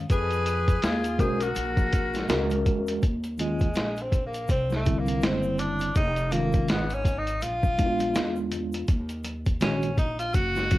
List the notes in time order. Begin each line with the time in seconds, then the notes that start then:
0.10 F2 G#4 B4, kick, closed hi-hat, shaker
0.30 closed hi-hat, shaker
0.46 closed hi-hat, shaker
0.68 kick, closed hi-hat, shaker
0.82 D#2 F4 G#4, snare, closed hi-hat, shaker
1.04 closed hi-hat, shaker
1.19 B1 G#3 C#4 F#4 G#4 A#4 C5, kick, closed hi-hat, low conga, shaker
1.40 F#4 A#4, closed hi-hat, shaker
1.55 A#1, closed hi-hat, high conga, shaker
1.77 kick, closed hi-hat, high conga, shaker
1.93 kick, closed hi-hat, shaker
2.14 snare, closed hi-hat, high conga, shaker
2.28 C#2 G#3 C#4 F#4 A#4, snare, closed hi-hat, shaker
2.50 closed hi-hat, high conga, shaker
2.66 E2, kick, closed hi-hat, low conga, shaker
2.87 closed hi-hat, shaker
3.02 D#2, kick, closed hi-hat, shaker
3.24 closed hi-hat, shaker
3.38 D#3 G#3 C#4 F4, closed hi-hat, high conga, shaker
3.59 kick, closed hi-hat, shaker
3.74 A#1, snare, closed hi-hat, low conga, shaker
3.96 closed hi-hat, shaker
4.02 C4
4.12 kick, closed hi-hat, low conga, shaker
4.26 A#3
4.34 closed hi-hat, shaker
4.48 C2 C4, kick, closed hi-hat, high conga, shaker
4.70 snare, high conga, shaker
4.76 A3
4.85 D3 G3 C4 E4, kick, closed hi-hat, shaker
4.99 A#3
5.06 closed hi-hat, high conga, shaker
5.21 F#1 C4, snare, closed hi-hat, shaker
5.43 shaker
5.58 D4, closed hi-hat, low conga, shaker
5.79 closed hi-hat, shaker
5.95 F1 D#4, kick, closed hi-hat, shaker
6.16 closed hi-hat, shaker
6.31 D#3 G#3 A#3 C#4 F4, closed hi-hat, high conga, shaker
6.52 kick, closed hi-hat, shaker
6.68 G#1 B3, snare, closed hi-hat, low conga, shaker
6.90 C#4, closed hi-hat, shaker
7.05 kick, closed hi-hat, low conga, shaker
7.19 D#4
7.27 closed hi-hat, shaker
7.41 A#1 F4, closed hi-hat, high conga, shaker
7.63 kick, high conga, shaker
7.78 G#3 B3 D4 E4, kick, closed hi-hat, shaker
7.86 F4
7.99 closed hi-hat, high conga, shaker
8.15 E2, snare, closed hi-hat, shaker
8.36 shaker
8.51 closed hi-hat, low conga, shaker
8.72 closed hi-hat, shaker
8.88 D#2, kick, closed hi-hat, shaker
9.09 closed hi-hat, shaker
9.24 closed hi-hat, high conga, shaker
9.46 kick, closed hi-hat, shaker
9.61 A#1 D#3 G#3 C#4 F#4, snare, closed hi-hat, low conga, shaker
9.82 closed hi-hat, shaker
9.97 D#4, kick, closed hi-hat, low conga, shaker
10.19 F4, closed hi-hat, shaker
10.34 F#1 F#4, kick, closed hi-hat, high conga, shaker
10.55 snare, high conga, shaker
10.70 D#3 G#3 C#4 F4, kick, closed hi-hat, shaker